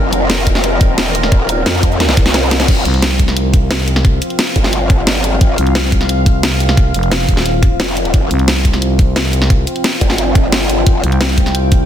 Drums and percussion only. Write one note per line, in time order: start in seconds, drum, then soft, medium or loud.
0.13 closed hi-hat medium
0.13 shaker medium
0.30 snare loud
0.30 closed hi-hat medium
0.47 kick medium
0.47 closed hi-hat loud
0.47 shaker medium
0.55 snare soft
0.55 shaker soft
0.64 closed hi-hat medium
0.81 kick loud
0.81 closed hi-hat loud
0.81 shaker medium
0.98 snare loud
0.98 closed hi-hat medium
1.15 closed hi-hat loud
1.15 shaker medium
1.23 snare medium
1.32 kick loud
1.32 closed hi-hat medium
1.49 closed hi-hat medium
1.49 shaker medium
1.66 snare loud
1.66 closed hi-hat medium
1.83 kick medium
1.83 closed hi-hat loud
1.83 shaker medium
1.92 shaker soft
2.00 snare medium
2.00 closed hi-hat medium
2.09 snare medium
2.17 kick loud
2.17 closed hi-hat loud
2.17 shaker medium
2.26 snare medium
2.34 snare medium
2.34 closed hi-hat medium
2.51 snare loud
2.51 closed hi-hat loud
2.51 shaker medium
2.60 snare medium
2.68 kick loud
2.68 closed hi-hat loud
2.68 crash loud
2.85 closed hi-hat medium
2.85 shaker medium
2.94 closed hi-hat soft
3.02 snare loud
3.02 closed hi-hat loud
3.11 closed hi-hat soft
3.19 kick medium
3.19 closed hi-hat medium
3.19 shaker medium
3.28 snare soft
3.28 shaker soft
3.37 closed hi-hat medium
3.54 kick loud
3.54 closed hi-hat medium
3.54 shaker medium
3.71 snare loud
3.71 closed hi-hat loud
3.88 closed hi-hat medium
3.88 shaker medium
3.96 snare medium
4.05 kick loud
4.05 closed hi-hat medium
4.22 closed hi-hat medium
4.22 shaker medium
4.30 closed hi-hat soft
4.39 snare loud
4.39 closed hi-hat loud
4.39 shaker soft
4.47 closed hi-hat soft
4.56 kick medium
4.56 closed hi-hat medium
4.56 shaker medium
4.64 snare soft
4.64 shaker soft
4.73 closed hi-hat medium
4.90 kick loud
4.90 closed hi-hat medium
4.90 shaker medium
5.07 snare loud
5.07 closed hi-hat medium
5.24 closed hi-hat medium
5.24 shaker medium
5.41 kick loud
5.41 closed hi-hat medium
5.58 closed hi-hat medium
5.58 shaker medium
5.67 closed hi-hat soft
5.75 snare loud
5.75 closed hi-hat medium
5.84 closed hi-hat soft
5.92 kick medium
5.92 closed hi-hat medium
5.92 shaker medium
6.01 snare soft
6.01 shaker soft
6.09 closed hi-hat medium
6.26 kick loud
6.26 closed hi-hat medium
6.26 shaker medium
6.43 snare loud
6.43 closed hi-hat medium
6.60 closed hi-hat medium
6.60 shaker medium
6.69 snare medium
6.77 kick loud
6.77 closed hi-hat medium
6.94 closed hi-hat medium
6.94 shaker medium
7.03 closed hi-hat soft
7.12 snare loud
7.12 closed hi-hat medium
7.20 closed hi-hat soft
7.29 kick medium
7.29 closed hi-hat medium
7.29 shaker medium
7.37 snare soft
7.37 shaker soft
7.46 closed hi-hat medium
7.63 kick loud
7.63 closed hi-hat medium
7.63 shaker medium
7.80 snare loud
7.80 closed hi-hat medium
7.97 closed hi-hat medium
7.97 shaker medium
8.05 closed hi-hat soft
8.14 kick loud
8.14 closed hi-hat medium
8.31 closed hi-hat medium
8.31 shaker medium
8.39 closed hi-hat soft
8.48 snare loud
8.48 closed hi-hat medium
8.56 closed hi-hat soft
8.65 kick medium
8.65 closed hi-hat medium
8.65 shaker medium
8.73 snare soft
8.73 shaker soft
8.82 closed hi-hat medium
8.99 kick loud
8.99 closed hi-hat medium
8.99 shaker medium
9.16 snare loud
9.16 closed hi-hat medium
9.33 closed hi-hat medium
9.33 shaker medium
9.42 snare medium
9.50 kick loud
9.50 closed hi-hat medium
9.67 closed hi-hat medium
9.67 shaker medium
9.76 closed hi-hat soft
9.84 snare loud
9.84 closed hi-hat medium
9.93 closed hi-hat soft
10.01 kick medium
10.01 closed hi-hat medium
10.01 shaker medium
10.10 snare soft
10.10 shaker soft
10.18 closed hi-hat medium
10.35 kick loud
10.35 closed hi-hat medium
10.35 shaker medium
10.52 snare loud
10.52 closed hi-hat medium
10.69 closed hi-hat medium
10.69 shaker medium
10.87 kick loud
10.87 closed hi-hat loud
11.04 closed hi-hat medium
11.04 shaker medium
11.12 closed hi-hat soft
11.21 snare loud
11.21 closed hi-hat loud
11.21 shaker soft
11.29 closed hi-hat soft
11.38 kick medium
11.38 closed hi-hat medium
11.38 shaker medium
11.46 snare soft
11.46 shaker soft
11.55 closed hi-hat medium
11.72 kick loud
11.72 closed hi-hat medium
11.72 shaker medium